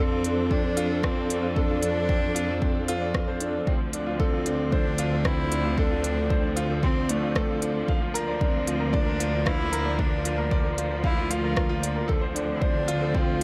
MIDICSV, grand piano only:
0, 0, Header, 1, 2, 480
1, 0, Start_track
1, 0, Key_signature, -1, "minor"
1, 0, Tempo, 526316
1, 1426, Time_signature, 4, 2, 24, 8
1, 12252, End_track
2, 0, Start_track
2, 0, Title_t, "Grand piano"
2, 0, Program_c, 0, 0
2, 0, Control_c, 0, 64, 127
2, 0, Note_on_c, 0, 62, 82
2, 0, Note_on_c, 0, 65, 76
2, 0, Note_on_c, 0, 69, 104
2, 102, Note_off_c, 0, 69, 0
2, 108, Note_off_c, 0, 65, 0
2, 108, Note_on_c, 0, 65, 74
2, 221, Note_off_c, 0, 65, 0
2, 229, Note_off_c, 0, 62, 0
2, 229, Note_on_c, 0, 62, 76
2, 342, Note_off_c, 0, 62, 0
2, 464, Note_on_c, 0, 60, 85
2, 534, Note_off_c, 0, 60, 0
2, 582, Note_on_c, 0, 62, 78
2, 698, Note_off_c, 0, 62, 0
2, 700, Note_on_c, 0, 65, 112
2, 817, Note_off_c, 0, 65, 0
2, 823, Note_on_c, 0, 69, 76
2, 939, Note_off_c, 0, 69, 0
2, 946, Note_on_c, 0, 60, 81
2, 1015, Note_off_c, 0, 60, 0
2, 1185, Note_on_c, 0, 62, 73
2, 1300, Note_off_c, 0, 62, 0
2, 1302, Note_on_c, 0, 65, 75
2, 1418, Note_off_c, 0, 65, 0
2, 1426, Note_on_c, 0, 69, 97
2, 1540, Note_off_c, 0, 69, 0
2, 1552, Note_on_c, 0, 65, 76
2, 1663, Note_off_c, 0, 65, 0
2, 1671, Note_on_c, 0, 62, 82
2, 1782, Note_off_c, 0, 62, 0
2, 1905, Note_on_c, 0, 60, 87
2, 1974, Note_off_c, 0, 60, 0
2, 2024, Note_on_c, 0, 62, 67
2, 2139, Note_off_c, 0, 62, 0
2, 2140, Note_on_c, 0, 65, 99
2, 2257, Note_off_c, 0, 65, 0
2, 2262, Note_on_c, 0, 69, 68
2, 2378, Note_off_c, 0, 69, 0
2, 2385, Note_on_c, 0, 60, 80
2, 2454, Note_off_c, 0, 60, 0
2, 2630, Note_on_c, 0, 65, 109
2, 2742, Note_off_c, 0, 65, 0
2, 2750, Note_on_c, 0, 74, 72
2, 2817, Note_off_c, 0, 74, 0
2, 2990, Note_on_c, 0, 72, 73
2, 3102, Note_off_c, 0, 72, 0
2, 3108, Note_on_c, 0, 62, 77
2, 3221, Note_off_c, 0, 62, 0
2, 3350, Note_on_c, 0, 60, 80
2, 3358, Control_c, 0, 64, 0
2, 3417, Note_off_c, 0, 60, 0
2, 3515, Control_c, 0, 64, 127
2, 3590, Note_on_c, 0, 62, 79
2, 3702, Note_off_c, 0, 62, 0
2, 3707, Note_on_c, 0, 65, 79
2, 3821, Note_off_c, 0, 65, 0
2, 3827, Note_on_c, 0, 69, 102
2, 3941, Note_off_c, 0, 69, 0
2, 3953, Note_on_c, 0, 65, 70
2, 4064, Note_off_c, 0, 65, 0
2, 4069, Note_on_c, 0, 62, 77
2, 4182, Note_off_c, 0, 62, 0
2, 4309, Note_on_c, 0, 72, 84
2, 4422, Note_off_c, 0, 72, 0
2, 4426, Note_on_c, 0, 62, 81
2, 4540, Note_off_c, 0, 62, 0
2, 4548, Note_on_c, 0, 65, 106
2, 4661, Note_off_c, 0, 65, 0
2, 4666, Note_on_c, 0, 69, 74
2, 4780, Note_off_c, 0, 69, 0
2, 4791, Note_on_c, 0, 60, 82
2, 4857, Note_off_c, 0, 60, 0
2, 5032, Note_on_c, 0, 62, 75
2, 5143, Note_off_c, 0, 62, 0
2, 5154, Note_on_c, 0, 65, 76
2, 5264, Note_off_c, 0, 65, 0
2, 5274, Note_on_c, 0, 69, 99
2, 5384, Note_off_c, 0, 69, 0
2, 5390, Note_on_c, 0, 65, 79
2, 5502, Note_off_c, 0, 65, 0
2, 5506, Note_on_c, 0, 62, 79
2, 5620, Note_off_c, 0, 62, 0
2, 5744, Note_on_c, 0, 72, 87
2, 5859, Note_off_c, 0, 72, 0
2, 5867, Note_on_c, 0, 62, 70
2, 5981, Note_off_c, 0, 62, 0
2, 5984, Note_on_c, 0, 65, 101
2, 6099, Note_off_c, 0, 65, 0
2, 6113, Note_on_c, 0, 69, 73
2, 6223, Note_off_c, 0, 69, 0
2, 6232, Note_on_c, 0, 60, 84
2, 6298, Note_off_c, 0, 60, 0
2, 6470, Note_on_c, 0, 62, 86
2, 6582, Note_off_c, 0, 62, 0
2, 6589, Note_on_c, 0, 65, 75
2, 6702, Note_off_c, 0, 65, 0
2, 6709, Note_on_c, 0, 69, 107
2, 6822, Note_off_c, 0, 69, 0
2, 6835, Note_on_c, 0, 65, 74
2, 6945, Note_off_c, 0, 65, 0
2, 6959, Note_on_c, 0, 62, 76
2, 7067, Note_off_c, 0, 62, 0
2, 7195, Note_on_c, 0, 77, 85
2, 7197, Control_c, 0, 64, 0
2, 7304, Note_off_c, 0, 77, 0
2, 7314, Note_on_c, 0, 65, 78
2, 7357, Control_c, 0, 64, 127
2, 7424, Note_off_c, 0, 65, 0
2, 7425, Note_on_c, 0, 70, 106
2, 7540, Note_off_c, 0, 70, 0
2, 7550, Note_on_c, 0, 74, 81
2, 7662, Note_off_c, 0, 74, 0
2, 7669, Note_on_c, 0, 62, 80
2, 7736, Note_off_c, 0, 62, 0
2, 7908, Note_on_c, 0, 65, 79
2, 8021, Note_off_c, 0, 65, 0
2, 8025, Note_on_c, 0, 70, 78
2, 8140, Note_off_c, 0, 70, 0
2, 8143, Note_on_c, 0, 74, 100
2, 8259, Note_off_c, 0, 74, 0
2, 8264, Note_on_c, 0, 70, 85
2, 8379, Note_off_c, 0, 70, 0
2, 8386, Note_on_c, 0, 65, 85
2, 8500, Note_off_c, 0, 65, 0
2, 8622, Note_on_c, 0, 77, 84
2, 8738, Note_off_c, 0, 77, 0
2, 8740, Note_on_c, 0, 65, 77
2, 8857, Note_off_c, 0, 65, 0
2, 8867, Note_on_c, 0, 70, 96
2, 8981, Note_off_c, 0, 70, 0
2, 8984, Note_on_c, 0, 74, 75
2, 9099, Note_off_c, 0, 74, 0
2, 9108, Note_on_c, 0, 62, 83
2, 9176, Note_off_c, 0, 62, 0
2, 9341, Note_on_c, 0, 65, 78
2, 9458, Note_off_c, 0, 65, 0
2, 9465, Note_on_c, 0, 70, 82
2, 9580, Note_off_c, 0, 70, 0
2, 9589, Note_on_c, 0, 74, 97
2, 9702, Note_off_c, 0, 74, 0
2, 9706, Note_on_c, 0, 70, 72
2, 9820, Note_off_c, 0, 70, 0
2, 9830, Note_on_c, 0, 65, 75
2, 9942, Note_off_c, 0, 65, 0
2, 10070, Note_on_c, 0, 77, 86
2, 10182, Note_off_c, 0, 77, 0
2, 10186, Note_on_c, 0, 65, 82
2, 10300, Note_off_c, 0, 65, 0
2, 10310, Note_on_c, 0, 77, 83
2, 10377, Note_off_c, 0, 77, 0
2, 10427, Note_on_c, 0, 70, 69
2, 10535, Note_off_c, 0, 70, 0
2, 10549, Note_on_c, 0, 70, 81
2, 10616, Note_off_c, 0, 70, 0
2, 10664, Note_on_c, 0, 65, 101
2, 10779, Note_off_c, 0, 65, 0
2, 10785, Note_on_c, 0, 74, 72
2, 10900, Note_off_c, 0, 74, 0
2, 10905, Note_on_c, 0, 70, 76
2, 11016, Note_on_c, 0, 69, 100
2, 11020, Note_off_c, 0, 70, 0
2, 11036, Control_c, 0, 64, 0
2, 11135, Note_off_c, 0, 69, 0
2, 11138, Note_on_c, 0, 72, 77
2, 11210, Note_off_c, 0, 72, 0
2, 11211, Control_c, 0, 64, 127
2, 11262, Note_on_c, 0, 62, 75
2, 11378, Note_off_c, 0, 62, 0
2, 11502, Note_on_c, 0, 72, 85
2, 11618, Note_off_c, 0, 72, 0
2, 11625, Note_on_c, 0, 62, 71
2, 11740, Note_off_c, 0, 62, 0
2, 11745, Note_on_c, 0, 65, 108
2, 11860, Note_off_c, 0, 65, 0
2, 11866, Note_on_c, 0, 69, 70
2, 11980, Note_off_c, 0, 69, 0
2, 11989, Note_on_c, 0, 60, 89
2, 12056, Note_off_c, 0, 60, 0
2, 12252, End_track
0, 0, End_of_file